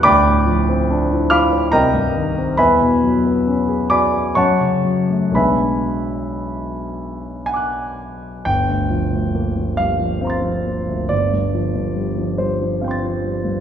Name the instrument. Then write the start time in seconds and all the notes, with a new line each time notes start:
grand piano
0.03 D2 D5 G5 B5 D6
0.25 A2
0.46 F3
0.68 C4
0.90 D4
1.11 E4
1.30 F4 F5 B5 D6 F6
1.53 C5
1.72 C2 A#4 D#5 G5 A#5
1.95 G2
2.15 D#3
2.37 C4
2.57 E2 B4 E5 G#5 B5
2.81 B2
3.03 F#3
3.25 B3
3.47 C#4
3.68 G#4
3.90 F#4 D5 G#5 B5 D6
4.13 G#4
4.35 F#2 C#5 F#5 A5 C#6
4.60 C#3
4.85 F#3
5.10 A3
5.32 B1 F#3 G#3 D4 F#4 B5
5.36 B4 E5 G#5
7.46 F#5 G#5
7.54 D6 F#6
8.45 G1 G5
8.69 D2
8.90 F3
9.12 D2
9.34 A#3
9.56 F3
9.77 G3 F5
9.99 F3
10.21 C4 F5 A#5
10.27 C6 A6
10.42 F3
10.66 A#3
10.88 D2
11.09 G1 D5
11.33 G2
11.54 F3
11.75 G2
11.96 G3
12.18 F3
12.38 G3 C5
12.61 F3
12.81 C4 F5 G5
12.88 C6 A6
13.03 F3
13.24 G3
13.45 G2